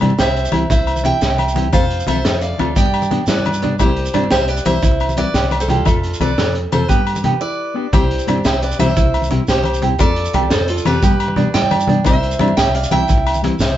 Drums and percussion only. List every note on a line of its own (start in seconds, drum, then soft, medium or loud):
0.01 closed hi-hat soft
0.01 high conga medium
0.01 low conga medium
0.01 low agogo medium
0.10 muted conga medium
0.19 snare medium
0.19 closed hi-hat medium
0.19 shekere medium
0.27 low conga medium
0.36 closed hi-hat soft
0.36 shekere soft
0.44 low conga soft
0.44 shekere medium
0.52 closed hi-hat soft
0.52 muted conga medium
0.52 high conga medium
0.52 low conga medium
0.52 low agogo medium
0.70 kick medium
0.70 closed hi-hat medium
0.70 low conga soft
0.70 shekere medium
0.79 low conga medium
0.87 closed hi-hat soft
0.87 low agogo medium
0.96 muted conga medium
0.96 shekere medium
1.05 closed hi-hat medium
1.05 high conga medium
1.05 low conga medium
1.22 snare medium
1.22 closed hi-hat medium
1.22 shekere medium
1.30 low conga medium
1.38 closed hi-hat soft
1.38 muted conga medium
1.38 low agogo medium
1.48 shekere medium
1.56 closed hi-hat soft
1.56 high conga medium
1.56 low conga medium
1.64 low conga soft
1.73 kick medium
1.73 closed hi-hat medium
1.73 muted conga medium
1.73 low agogo medium
1.73 shekere medium
1.82 low conga medium
1.90 closed hi-hat soft
2.00 shekere medium
2.07 closed hi-hat soft
2.07 high conga medium
2.07 low conga medium
2.07 low agogo medium
2.16 muted conga medium
2.25 snare loud
2.25 closed hi-hat medium
2.25 shekere medium
2.33 low conga medium
2.42 closed hi-hat soft
2.42 shekere soft
2.51 low conga soft
2.59 closed hi-hat soft
2.59 muted conga medium
2.59 high conga medium
2.59 low conga medium
2.59 low agogo medium
2.76 kick medium
2.76 closed hi-hat medium
2.76 low conga soft
2.76 shekere medium
2.85 low conga medium
2.94 closed hi-hat soft
2.94 low agogo medium
3.02 muted conga medium
3.02 shekere medium
3.11 closed hi-hat soft
3.11 high conga medium
3.11 low conga medium
3.20 low conga soft
3.27 snare medium
3.27 closed hi-hat medium
3.27 shekere medium
3.38 low conga medium
3.45 closed hi-hat soft
3.45 muted conga medium
3.45 low agogo medium
3.53 low conga soft
3.53 shekere medium
3.62 closed hi-hat medium
3.62 high conga medium
3.62 low conga medium
3.73 low conga soft
3.79 kick medium
3.79 closed hi-hat medium
3.79 muted conga medium
3.79 low agogo medium
3.79 shekere medium
3.89 low conga medium
3.96 closed hi-hat medium
4.06 shekere medium
4.13 closed hi-hat soft
4.13 high conga medium
4.13 low conga medium
4.13 low agogo medium
4.23 muted conga medium
4.31 snare medium
4.31 closed hi-hat medium
4.31 shekere medium
4.41 low conga medium
4.48 closed hi-hat medium
4.48 shekere soft
4.57 low conga soft
4.57 shekere medium
4.65 closed hi-hat medium
4.65 muted conga medium
4.65 high conga medium
4.65 low conga medium
4.65 low agogo medium
4.82 kick medium
4.82 closed hi-hat medium
4.82 low conga soft
4.82 shekere medium
4.91 low conga medium
5.00 closed hi-hat medium
5.00 low agogo medium
5.09 muted conga medium
5.09 shekere medium
5.17 closed hi-hat medium
5.17 high conga medium
5.17 low conga medium
5.27 low conga soft
5.34 snare medium
5.34 closed hi-hat medium
5.34 shekere medium
5.44 low conga medium
5.51 closed hi-hat soft
5.51 muted conga medium
5.51 low agogo medium
5.60 low conga soft
5.60 shekere medium
5.68 closed hi-hat soft
5.68 high conga medium
5.68 low conga medium
5.76 low conga soft
5.85 kick medium
5.85 closed hi-hat medium
5.85 muted conga medium
5.85 low conga soft
5.85 low agogo medium
5.85 shekere medium
5.94 low conga medium
6.03 closed hi-hat soft
6.03 shekere soft
6.12 low conga soft
6.12 shekere medium
6.21 closed hi-hat soft
6.21 high conga medium
6.21 low conga medium
6.21 low agogo medium
6.30 muted conga medium
6.38 snare medium
6.38 closed hi-hat medium
6.38 shekere medium
6.48 low conga medium
6.55 closed hi-hat soft
6.72 closed hi-hat soft
6.72 muted conga medium
6.72 high conga medium
6.72 low conga medium
6.72 low agogo medium
6.89 kick medium
6.89 closed hi-hat medium
6.89 shekere medium
7.07 closed hi-hat soft
7.07 low agogo medium
7.16 muted conga medium
7.16 low conga soft
7.16 shekere medium
7.24 closed hi-hat soft
7.24 high conga medium
7.24 low conga medium
7.34 low conga soft
7.93 kick medium
7.93 closed hi-hat medium
7.93 muted conga loud
7.93 low agogo medium
7.93 shekere medium
8.02 low conga medium
8.11 closed hi-hat medium
8.19 shekere medium
8.27 closed hi-hat soft
8.27 high conga medium
8.27 low conga loud
8.27 low agogo medium
8.37 muted conga medium
8.45 snare medium
8.45 closed hi-hat medium
8.45 shekere medium
8.54 low conga medium
8.62 closed hi-hat soft
8.62 shekere soft
8.71 low conga soft
8.71 shekere medium
8.79 snare soft
8.79 closed hi-hat soft
8.79 muted conga medium
8.79 high conga medium
8.79 low conga medium
8.79 low agogo medium
8.96 kick medium
8.96 closed hi-hat medium
8.96 low conga soft
8.96 shekere loud
9.05 low conga medium
9.14 closed hi-hat soft
9.14 low agogo medium
9.22 muted conga medium
9.22 shekere medium
9.31 closed hi-hat medium
9.31 high conga medium
9.31 low conga medium
9.39 low conga soft
9.48 snare medium
9.48 closed hi-hat medium
9.48 shekere medium
9.56 low conga medium
9.64 closed hi-hat medium
9.64 muted conga medium
9.64 low agogo medium
9.73 low conga soft
9.73 shekere medium
9.82 closed hi-hat medium
9.82 low conga medium
9.91 low conga soft
9.99 kick medium
9.99 closed hi-hat medium
9.99 muted conga medium
9.99 low agogo medium
9.99 shekere medium
10.16 closed hi-hat medium
10.25 shekere medium
10.33 closed hi-hat medium
10.33 high conga medium
10.33 low conga medium
10.33 low agogo medium
10.43 muted conga medium
10.50 snare medium
10.50 closed hi-hat medium
10.50 shekere medium
10.60 low conga medium
10.68 closed hi-hat medium
10.68 shekere soft
10.77 low conga soft
10.77 shekere medium
10.85 closed hi-hat soft
10.85 muted conga medium
10.85 high conga medium
10.85 low conga medium
10.85 low agogo medium
11.03 kick loud
11.03 closed hi-hat medium
11.03 shekere medium
11.11 low conga medium
11.20 closed hi-hat soft
11.20 low agogo medium
11.28 muted conga medium
11.36 closed hi-hat soft
11.36 high conga loud
11.36 low conga medium
11.46 low conga soft
11.54 snare medium
11.54 closed hi-hat medium
11.54 shekere medium
11.62 low conga medium
11.71 closed hi-hat medium
11.71 muted conga loud
11.71 low agogo medium
11.80 shekere medium
11.87 closed hi-hat soft
11.87 high conga loud
11.87 low conga medium
11.97 low conga soft
12.04 kick medium
12.04 closed hi-hat medium
12.04 muted conga loud
12.04 low agogo medium
12.04 shekere medium
12.14 low conga medium
12.23 closed hi-hat medium
12.31 shekere medium
12.39 closed hi-hat soft
12.39 high conga loud
12.39 low conga loud
12.39 low agogo medium
12.48 muted conga medium
12.57 snare medium
12.57 closed hi-hat medium
12.57 shekere medium
12.66 low conga medium
12.75 closed hi-hat medium
12.75 shekere soft
12.83 low conga soft
12.83 shekere medium
12.91 closed hi-hat medium
12.91 muted conga medium
12.91 high conga medium
12.91 low conga medium
12.91 low agogo medium
13.09 kick medium
13.09 closed hi-hat medium
13.09 shekere loud
13.18 low conga medium
13.26 closed hi-hat medium
13.26 low agogo medium
13.34 muted conga medium
13.34 shekere medium
13.44 closed hi-hat medium
13.44 high conga loud
13.44 low conga medium
13.53 low conga soft
13.59 snare medium
13.59 closed hi-hat medium
13.59 shekere loud
13.70 low conga medium